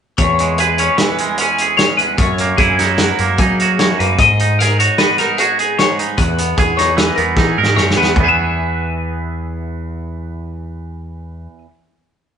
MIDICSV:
0, 0, Header, 1, 5, 480
1, 0, Start_track
1, 0, Tempo, 399734
1, 225, Time_signature, 5, 2, 24, 8
1, 7905, Tempo, 395778
1, 14933, End_track
2, 0, Start_track
2, 0, Title_t, "Clean electric guitar"
2, 0, Program_c, 0, 27
2, 222, Note_on_c, 0, 73, 83
2, 702, Note_off_c, 0, 73, 0
2, 703, Note_on_c, 0, 68, 70
2, 943, Note_off_c, 0, 68, 0
2, 948, Note_on_c, 0, 73, 72
2, 1178, Note_off_c, 0, 73, 0
2, 1178, Note_on_c, 0, 71, 72
2, 1413, Note_off_c, 0, 71, 0
2, 1413, Note_on_c, 0, 70, 74
2, 1652, Note_off_c, 0, 70, 0
2, 1652, Note_on_c, 0, 68, 77
2, 2125, Note_off_c, 0, 68, 0
2, 2129, Note_on_c, 0, 73, 79
2, 2364, Note_off_c, 0, 73, 0
2, 2368, Note_on_c, 0, 71, 68
2, 2613, Note_off_c, 0, 71, 0
2, 2613, Note_on_c, 0, 73, 80
2, 3093, Note_on_c, 0, 68, 78
2, 3101, Note_off_c, 0, 73, 0
2, 3341, Note_off_c, 0, 68, 0
2, 3347, Note_on_c, 0, 73, 74
2, 3587, Note_off_c, 0, 73, 0
2, 3587, Note_on_c, 0, 71, 79
2, 3819, Note_off_c, 0, 71, 0
2, 3819, Note_on_c, 0, 70, 76
2, 4065, Note_off_c, 0, 70, 0
2, 4071, Note_on_c, 0, 68, 74
2, 4552, Note_off_c, 0, 68, 0
2, 4556, Note_on_c, 0, 73, 83
2, 4788, Note_off_c, 0, 73, 0
2, 4793, Note_on_c, 0, 71, 74
2, 5028, Note_off_c, 0, 71, 0
2, 5033, Note_on_c, 0, 75, 81
2, 5507, Note_off_c, 0, 75, 0
2, 5512, Note_on_c, 0, 70, 78
2, 5748, Note_off_c, 0, 70, 0
2, 5753, Note_on_c, 0, 73, 75
2, 5979, Note_off_c, 0, 73, 0
2, 5984, Note_on_c, 0, 71, 76
2, 6225, Note_off_c, 0, 71, 0
2, 6230, Note_on_c, 0, 70, 76
2, 6461, Note_on_c, 0, 68, 75
2, 6471, Note_off_c, 0, 70, 0
2, 6945, Note_off_c, 0, 68, 0
2, 6947, Note_on_c, 0, 73, 80
2, 7186, Note_off_c, 0, 73, 0
2, 7186, Note_on_c, 0, 71, 71
2, 7402, Note_off_c, 0, 71, 0
2, 7417, Note_on_c, 0, 71, 82
2, 7895, Note_on_c, 0, 68, 73
2, 7900, Note_off_c, 0, 71, 0
2, 8132, Note_on_c, 0, 73, 76
2, 8141, Note_off_c, 0, 68, 0
2, 8365, Note_off_c, 0, 73, 0
2, 8369, Note_on_c, 0, 71, 73
2, 8605, Note_on_c, 0, 70, 74
2, 8619, Note_off_c, 0, 71, 0
2, 8842, Note_off_c, 0, 70, 0
2, 8842, Note_on_c, 0, 68, 81
2, 9335, Note_off_c, 0, 68, 0
2, 9337, Note_on_c, 0, 73, 82
2, 9582, Note_off_c, 0, 73, 0
2, 9589, Note_on_c, 0, 71, 69
2, 9866, Note_off_c, 0, 71, 0
2, 9866, Note_on_c, 0, 68, 63
2, 9916, Note_off_c, 0, 68, 0
2, 9916, Note_on_c, 0, 71, 61
2, 9970, Note_on_c, 0, 76, 62
2, 13964, Note_off_c, 0, 71, 0
2, 13969, Note_off_c, 0, 76, 0
2, 14933, End_track
3, 0, Start_track
3, 0, Title_t, "Clean electric guitar"
3, 0, Program_c, 1, 27
3, 240, Note_on_c, 1, 40, 71
3, 485, Note_on_c, 1, 56, 56
3, 722, Note_on_c, 1, 71, 56
3, 957, Note_on_c, 1, 61, 57
3, 1170, Note_on_c, 1, 52, 64
3, 1440, Note_off_c, 1, 56, 0
3, 1445, Note_on_c, 1, 56, 56
3, 1671, Note_off_c, 1, 61, 0
3, 1687, Note_on_c, 1, 61, 60
3, 1913, Note_off_c, 1, 71, 0
3, 1941, Note_on_c, 1, 68, 54
3, 2390, Note_off_c, 1, 40, 0
3, 2404, Note_on_c, 1, 40, 55
3, 2590, Note_off_c, 1, 52, 0
3, 2609, Note_off_c, 1, 61, 0
3, 2635, Note_off_c, 1, 40, 0
3, 2642, Note_on_c, 1, 42, 69
3, 2678, Note_off_c, 1, 56, 0
3, 2678, Note_off_c, 1, 68, 0
3, 2889, Note_on_c, 1, 58, 57
3, 3117, Note_on_c, 1, 64, 56
3, 3354, Note_on_c, 1, 63, 57
3, 3599, Note_on_c, 1, 54, 65
3, 3842, Note_off_c, 1, 58, 0
3, 3847, Note_on_c, 1, 58, 59
3, 4100, Note_off_c, 1, 63, 0
3, 4105, Note_on_c, 1, 63, 60
3, 4316, Note_off_c, 1, 64, 0
3, 4341, Note_on_c, 1, 66, 54
3, 4550, Note_off_c, 1, 42, 0
3, 4564, Note_on_c, 1, 42, 68
3, 4794, Note_off_c, 1, 58, 0
3, 4808, Note_on_c, 1, 58, 53
3, 5010, Note_off_c, 1, 42, 0
3, 5012, Note_off_c, 1, 58, 0
3, 5038, Note_on_c, 1, 44, 65
3, 5074, Note_off_c, 1, 54, 0
3, 5074, Note_off_c, 1, 66, 0
3, 5287, Note_off_c, 1, 63, 0
3, 5292, Note_on_c, 1, 63, 57
3, 5545, Note_on_c, 1, 68, 56
3, 5761, Note_off_c, 1, 68, 0
3, 5766, Note_on_c, 1, 66, 68
3, 5984, Note_on_c, 1, 59, 66
3, 6242, Note_off_c, 1, 63, 0
3, 6247, Note_on_c, 1, 63, 58
3, 6479, Note_off_c, 1, 66, 0
3, 6484, Note_on_c, 1, 66, 66
3, 6724, Note_off_c, 1, 66, 0
3, 6729, Note_on_c, 1, 68, 54
3, 6953, Note_off_c, 1, 44, 0
3, 6967, Note_on_c, 1, 44, 68
3, 7193, Note_off_c, 1, 63, 0
3, 7198, Note_on_c, 1, 63, 53
3, 7408, Note_off_c, 1, 44, 0
3, 7426, Note_on_c, 1, 40, 66
3, 7462, Note_off_c, 1, 63, 0
3, 7670, Note_off_c, 1, 59, 0
3, 7675, Note_on_c, 1, 59, 54
3, 7912, Note_off_c, 1, 68, 0
3, 7917, Note_on_c, 1, 68, 57
3, 8151, Note_on_c, 1, 63, 61
3, 8372, Note_on_c, 1, 52, 62
3, 8615, Note_off_c, 1, 59, 0
3, 8630, Note_on_c, 1, 59, 57
3, 8861, Note_off_c, 1, 63, 0
3, 8875, Note_on_c, 1, 63, 64
3, 9110, Note_off_c, 1, 68, 0
3, 9115, Note_on_c, 1, 70, 55
3, 9317, Note_off_c, 1, 40, 0
3, 9331, Note_on_c, 1, 40, 68
3, 9572, Note_off_c, 1, 59, 0
3, 9587, Note_on_c, 1, 59, 54
3, 9792, Note_off_c, 1, 52, 0
3, 9798, Note_off_c, 1, 40, 0
3, 9798, Note_off_c, 1, 59, 0
3, 9803, Note_off_c, 1, 63, 0
3, 9803, Note_off_c, 1, 70, 0
3, 9812, Note_on_c, 1, 40, 58
3, 9839, Note_on_c, 1, 52, 59
3, 9867, Note_on_c, 1, 59, 56
3, 9911, Note_on_c, 1, 68, 53
3, 14057, Note_off_c, 1, 40, 0
3, 14084, Note_off_c, 1, 52, 0
3, 14112, Note_off_c, 1, 59, 0
3, 14156, Note_off_c, 1, 68, 0
3, 14933, End_track
4, 0, Start_track
4, 0, Title_t, "Picked electric bass"
4, 0, Program_c, 2, 34
4, 227, Note_on_c, 2, 40, 87
4, 1053, Note_off_c, 2, 40, 0
4, 2629, Note_on_c, 2, 42, 95
4, 3043, Note_off_c, 2, 42, 0
4, 3099, Note_on_c, 2, 42, 85
4, 3726, Note_off_c, 2, 42, 0
4, 3833, Note_on_c, 2, 42, 83
4, 4039, Note_off_c, 2, 42, 0
4, 4069, Note_on_c, 2, 54, 91
4, 4692, Note_off_c, 2, 54, 0
4, 4804, Note_on_c, 2, 42, 93
4, 5006, Note_off_c, 2, 42, 0
4, 5024, Note_on_c, 2, 44, 87
4, 5856, Note_off_c, 2, 44, 0
4, 7429, Note_on_c, 2, 40, 96
4, 7840, Note_off_c, 2, 40, 0
4, 7906, Note_on_c, 2, 40, 79
4, 8528, Note_off_c, 2, 40, 0
4, 8626, Note_on_c, 2, 40, 79
4, 8834, Note_off_c, 2, 40, 0
4, 8863, Note_on_c, 2, 52, 89
4, 9072, Note_off_c, 2, 52, 0
4, 9112, Note_on_c, 2, 44, 76
4, 9326, Note_off_c, 2, 44, 0
4, 9343, Note_on_c, 2, 42, 82
4, 9561, Note_off_c, 2, 42, 0
4, 9593, Note_on_c, 2, 40, 78
4, 9807, Note_off_c, 2, 40, 0
4, 9822, Note_on_c, 2, 40, 89
4, 13821, Note_off_c, 2, 40, 0
4, 14933, End_track
5, 0, Start_track
5, 0, Title_t, "Drums"
5, 214, Note_on_c, 9, 42, 80
5, 219, Note_on_c, 9, 36, 106
5, 334, Note_off_c, 9, 42, 0
5, 339, Note_off_c, 9, 36, 0
5, 464, Note_on_c, 9, 42, 60
5, 585, Note_off_c, 9, 42, 0
5, 695, Note_on_c, 9, 42, 78
5, 815, Note_off_c, 9, 42, 0
5, 937, Note_on_c, 9, 42, 62
5, 1057, Note_off_c, 9, 42, 0
5, 1176, Note_on_c, 9, 42, 80
5, 1178, Note_on_c, 9, 38, 101
5, 1296, Note_off_c, 9, 42, 0
5, 1298, Note_off_c, 9, 38, 0
5, 1421, Note_on_c, 9, 42, 61
5, 1541, Note_off_c, 9, 42, 0
5, 1653, Note_on_c, 9, 42, 85
5, 1773, Note_off_c, 9, 42, 0
5, 1900, Note_on_c, 9, 42, 58
5, 2020, Note_off_c, 9, 42, 0
5, 2145, Note_on_c, 9, 42, 81
5, 2147, Note_on_c, 9, 38, 103
5, 2265, Note_off_c, 9, 42, 0
5, 2267, Note_off_c, 9, 38, 0
5, 2384, Note_on_c, 9, 42, 57
5, 2504, Note_off_c, 9, 42, 0
5, 2618, Note_on_c, 9, 42, 79
5, 2621, Note_on_c, 9, 36, 107
5, 2738, Note_off_c, 9, 42, 0
5, 2742, Note_off_c, 9, 36, 0
5, 2860, Note_on_c, 9, 42, 62
5, 2980, Note_off_c, 9, 42, 0
5, 3102, Note_on_c, 9, 36, 94
5, 3105, Note_on_c, 9, 42, 72
5, 3222, Note_off_c, 9, 36, 0
5, 3225, Note_off_c, 9, 42, 0
5, 3347, Note_on_c, 9, 42, 57
5, 3349, Note_on_c, 9, 38, 33
5, 3467, Note_off_c, 9, 42, 0
5, 3469, Note_off_c, 9, 38, 0
5, 3575, Note_on_c, 9, 42, 77
5, 3578, Note_on_c, 9, 38, 102
5, 3695, Note_off_c, 9, 42, 0
5, 3698, Note_off_c, 9, 38, 0
5, 3825, Note_on_c, 9, 42, 57
5, 3945, Note_off_c, 9, 42, 0
5, 4060, Note_on_c, 9, 42, 81
5, 4065, Note_on_c, 9, 36, 107
5, 4180, Note_off_c, 9, 42, 0
5, 4185, Note_off_c, 9, 36, 0
5, 4317, Note_on_c, 9, 42, 56
5, 4437, Note_off_c, 9, 42, 0
5, 4551, Note_on_c, 9, 42, 73
5, 4553, Note_on_c, 9, 38, 96
5, 4671, Note_off_c, 9, 42, 0
5, 4674, Note_off_c, 9, 38, 0
5, 4803, Note_on_c, 9, 42, 58
5, 4923, Note_off_c, 9, 42, 0
5, 5026, Note_on_c, 9, 36, 107
5, 5028, Note_on_c, 9, 42, 86
5, 5147, Note_off_c, 9, 36, 0
5, 5148, Note_off_c, 9, 42, 0
5, 5277, Note_on_c, 9, 42, 61
5, 5397, Note_off_c, 9, 42, 0
5, 5526, Note_on_c, 9, 42, 77
5, 5528, Note_on_c, 9, 38, 32
5, 5646, Note_off_c, 9, 42, 0
5, 5649, Note_off_c, 9, 38, 0
5, 5760, Note_on_c, 9, 42, 62
5, 5880, Note_off_c, 9, 42, 0
5, 5982, Note_on_c, 9, 42, 77
5, 5984, Note_on_c, 9, 38, 97
5, 6102, Note_off_c, 9, 42, 0
5, 6104, Note_off_c, 9, 38, 0
5, 6220, Note_on_c, 9, 42, 62
5, 6223, Note_on_c, 9, 38, 31
5, 6340, Note_off_c, 9, 42, 0
5, 6343, Note_off_c, 9, 38, 0
5, 6461, Note_on_c, 9, 42, 81
5, 6581, Note_off_c, 9, 42, 0
5, 6710, Note_on_c, 9, 42, 57
5, 6830, Note_off_c, 9, 42, 0
5, 6950, Note_on_c, 9, 42, 73
5, 6953, Note_on_c, 9, 38, 96
5, 7070, Note_off_c, 9, 42, 0
5, 7073, Note_off_c, 9, 38, 0
5, 7193, Note_on_c, 9, 42, 59
5, 7313, Note_off_c, 9, 42, 0
5, 7421, Note_on_c, 9, 36, 105
5, 7428, Note_on_c, 9, 42, 74
5, 7541, Note_off_c, 9, 36, 0
5, 7548, Note_off_c, 9, 42, 0
5, 7665, Note_on_c, 9, 42, 58
5, 7785, Note_off_c, 9, 42, 0
5, 7897, Note_on_c, 9, 42, 68
5, 7899, Note_on_c, 9, 36, 96
5, 8018, Note_off_c, 9, 42, 0
5, 8020, Note_off_c, 9, 36, 0
5, 8151, Note_on_c, 9, 42, 58
5, 8153, Note_on_c, 9, 38, 33
5, 8272, Note_off_c, 9, 42, 0
5, 8274, Note_off_c, 9, 38, 0
5, 8383, Note_on_c, 9, 42, 74
5, 8385, Note_on_c, 9, 38, 103
5, 8504, Note_off_c, 9, 42, 0
5, 8506, Note_off_c, 9, 38, 0
5, 8622, Note_on_c, 9, 42, 59
5, 8743, Note_off_c, 9, 42, 0
5, 8855, Note_on_c, 9, 36, 98
5, 8857, Note_on_c, 9, 38, 54
5, 8976, Note_off_c, 9, 36, 0
5, 8978, Note_off_c, 9, 38, 0
5, 9181, Note_on_c, 9, 38, 66
5, 9302, Note_off_c, 9, 38, 0
5, 9348, Note_on_c, 9, 38, 65
5, 9469, Note_off_c, 9, 38, 0
5, 9508, Note_on_c, 9, 38, 82
5, 9629, Note_off_c, 9, 38, 0
5, 9662, Note_on_c, 9, 38, 72
5, 9783, Note_off_c, 9, 38, 0
5, 9819, Note_on_c, 9, 36, 88
5, 9824, Note_on_c, 9, 43, 89
5, 9940, Note_off_c, 9, 36, 0
5, 9945, Note_off_c, 9, 43, 0
5, 14933, End_track
0, 0, End_of_file